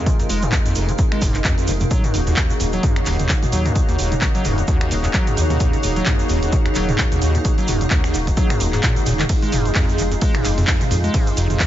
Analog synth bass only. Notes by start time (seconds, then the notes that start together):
0.29 F1
0.76 F1
1.22 F1
1.68 F1
2.14 D#1
2.60 D#1
3.06 D#1
3.53 D#2
3.99 D#1
4.45 D#1
4.91 D#1
5.37 D#2
5.83 D#1
6.30 D#1
6.76 D#1
7.22 D#2
7.68 D#1
8.14 D#1
8.60 D#1
9.06 D#1
9.53 F1
9.99 F1
10.45 F1
10.91 F2
11.37 F1